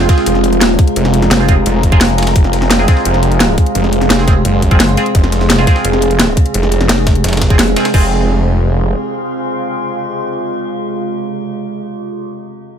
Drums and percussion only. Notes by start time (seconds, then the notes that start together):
0.00 snare
0.09 kick, snare, closed hi-hat
0.18 snare
0.26 closed hi-hat
0.35 snare
0.44 closed hi-hat
0.53 closed hi-hat
0.61 snare, closed hi-hat
0.79 kick, closed hi-hat
0.88 closed hi-hat
0.96 closed hi-hat
1.05 snare
1.14 closed hi-hat
1.22 snare, closed hi-hat
1.31 snare, closed hi-hat
1.40 snare
1.48 kick, closed hi-hat
1.66 closed hi-hat
1.83 kick, closed hi-hat
1.92 kick, closed hi-hat
2.01 snare, closed hi-hat, open hi-hat
2.10 closed hi-hat
2.18 snare, closed hi-hat
2.23 snare, closed hi-hat
2.27 snare, closed hi-hat
2.36 kick, closed hi-hat
2.44 snare
2.53 snare, closed hi-hat
2.62 snare
2.71 snare, closed hi-hat
2.79 snare
2.88 kick, snare, closed hi-hat
2.97 snare
3.05 closed hi-hat
3.14 snare
3.23 closed hi-hat
3.32 closed hi-hat
3.40 snare, closed hi-hat
3.58 kick, closed hi-hat
3.66 closed hi-hat
3.75 closed hi-hat
3.84 snare
3.93 closed hi-hat
4.01 snare, closed hi-hat
4.10 snare, closed hi-hat
4.19 snare
4.28 kick, closed hi-hat
4.45 closed hi-hat
4.62 kick, closed hi-hat
4.71 kick, closed hi-hat
4.80 snare, closed hi-hat, open hi-hat
4.89 closed hi-hat
4.97 snare, closed hi-hat
5.06 closed hi-hat
5.15 kick, closed hi-hat
5.24 snare
5.32 snare, closed hi-hat
5.41 snare
5.50 snare, closed hi-hat
5.58 snare
5.67 kick, snare, closed hi-hat
5.76 snare
5.85 closed hi-hat
5.93 snare
6.02 closed hi-hat
6.11 closed hi-hat
6.19 snare, closed hi-hat
6.37 kick, closed hi-hat
6.46 closed hi-hat
6.54 closed hi-hat
6.63 snare
6.72 closed hi-hat
6.81 snare, closed hi-hat
6.89 snare, closed hi-hat
6.98 snare
7.07 kick, snare, closed hi-hat
7.15 closed hi-hat
7.24 snare, closed hi-hat
7.28 snare, closed hi-hat
7.33 snare, closed hi-hat
7.37 snare, closed hi-hat
7.42 kick, snare, closed hi-hat
7.50 kick, closed hi-hat
7.59 snare, closed hi-hat, open hi-hat
7.68 closed hi-hat
7.76 snare, closed hi-hat
7.85 snare, closed hi-hat
7.94 kick, crash